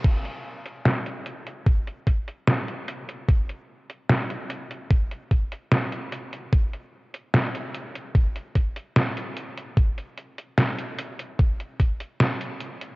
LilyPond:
\new DrumStaff \with { instrumentName = "Drums" } \drummode { \time 4/4 \tempo 4 = 74 <cymc hh bd>16 hh8 hh16 <hh sn>16 hh16 hh16 hh16 <hh bd>16 hh16 <hh bd>16 hh16 <hh sn>16 hh16 hh16 hh16 | <hh bd>16 hh8 hh16 <hh sn>16 hh16 hh16 hh16 <hh bd>16 hh16 <hh bd>16 hh16 <hh sn>16 hh16 hh16 hh16 | <hh bd>16 hh8 hh16 <hh sn>16 hh16 hh16 hh16 <hh bd>16 hh16 <hh bd>16 hh16 <hh sn>16 hh16 hh16 hh16 | <hh bd>16 hh16 hh16 hh16 <hh sn>16 hh16 hh16 hh16 <hh bd>16 hh16 <hh bd>16 hh16 <hh sn>16 hh16 hh16 hh16 | }